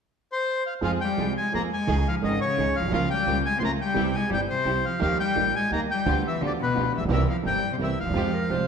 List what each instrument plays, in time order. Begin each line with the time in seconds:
0.32 bandoneon C5
0.66 bandoneon F5
0.81 grand piano F2 F3 G#3 C4 G#4, upright bass F2, cello F3, string section C4 F4 G#4, bandoneon F5
1.01 cello G3, bandoneon G5
1.17 upright bass C2, grand piano C2 C3 F3 G#3 C4 G#4, string section C4 F4 G#4
1.37 cello G#3, bandoneon G#5
1.52 grand piano F2 F3 G#3 C4 G#4, upright bass F2, cello A#3, string section C4 F4 G#4, bandoneon A#5
1.71 cello G#3, bandoneon G#5
1.87 grand piano C#2 C#3 D#3 G#3 C#4 G#4, upright bass C#2, string section C#4 D#4 G#4
2.07 cello F3, bandoneon F5
2.22 grand piano G#1 G#2 D#3 G#3 C#4 G#4, upright bass G#1, cello D#3, string section C#4 D#4 G#4, bandoneon D#5
2.41 cello C#3, bandoneon C#5
2.57 grand piano C#2 C#3 D#3 G#3 C#4 G#4, upright bass C#2, string section C#4 D#4 G#4
2.76 grand piano A#1, cello F3, bandoneon F5
2.80 upright bass A#1 B1
2.85 grand piano B1 C2, upright bass C2
2.91 upright bass C#2, grand piano C#2 C#3 F3 A#3 F4, cello F3, string section C#4 F4 A#4, bandoneon F5
3.10 cello G3, bandoneon G5
3.26 upright bass C#2, grand piano C#2 C#3 F3 A#3 F4, string section C#4 F4 A#4
3.45 cello G#3, bandoneon G#5
3.57 grand piano C#2 C#3 F3 A#3 F4, cello A#3 C4, string section C#4 F4, bandoneon C6
3.61 upright bass C#2, string section A#4, bandoneon A#5
3.79 cello G3, bandoneon G5
3.94 grand piano C2 C3 E3 G3 C4 G4, upright bass C2, string section C4 E4 G4
4.13 cello G#3, bandoneon G#5
4.29 grand piano G1 G2 E3 G3 C4 G4, upright bass G1, cello G3, string section C4 E4 G4
4.34 bandoneon G5
4.49 cello C3, bandoneon C5
4.65 upright bass C2, grand piano C2 C3 E3 G3 C4 G4, string section C4 E4 G4
4.85 cello F3, bandoneon F5
4.99 grand piano D#2 D#3 G3 A#3 G4, upright bass D#2, cello F3, string section A#3 D#4 G4, bandoneon F5
5.19 cello G3, bandoneon G5
5.35 upright bass A#1, grand piano A#1 A#2 D#3 G3 A#3 G4, string section A#3 D#4 G4
5.55 cello G#3, bandoneon G#5
5.71 grand piano D#2 D#3 G3 A#3 G4, upright bass D#2, string section A#3 D#4 G4, cello A#3, bandoneon A#5
5.91 cello G3, bandoneon G5
6.05 upright bass D2, grand piano D2 D3 F3 B3 D4 G4, string section B3 F4 G4
6.26 cello E3, bandoneon E5
6.41 grand piano D2 D3 F3 B3 D4 G4, upright bass D2, cello D3, string section B3 F4 G4
6.46 bandoneon D5
6.59 cello B2, bandoneon B4
6.74 grand piano D2 D3 F3 B3 D4 G4, upright bass D2, string section B3 F4 G4
6.94 grand piano A1, upright bass A1, cello E3, bandoneon E5
7.01 grand piano A#1, upright bass A#1
7.05 upright bass B1, grand piano B1 C3 E3
7.09 upright bass C2, grand piano C2 A#3 C4 G4, cello E3, string section C4 E4 A#4, bandoneon E5
7.27 cello F3, bandoneon F5
7.42 grand piano G1 G2 E3 A#3 C4 G4, upright bass G1, string section C4 E4 A#4
7.47 cello G3, bandoneon G5
7.72 cello C3, bandoneon C5
7.78 grand piano C2 C3 E3 A#3 C4 G4, upright bass C2, cello E3, string section C4 E4 A#4
7.83 bandoneon E5
7.98 grand piano D2, upright bass D2, cello F3, bandoneon F5
8.04 grand piano D#2, upright bass D#2
8.09 grand piano E2, upright bass E2
8.14 grand piano F2 F3 G#3 C4 G4, upright bass F2, string section G#3 F4 G4
8.33 clarinet A#4
8.49 grand piano C2 C3 F3 G#3 C4 G4, upright bass C2, string section G#3 F4 G4, clarinet C5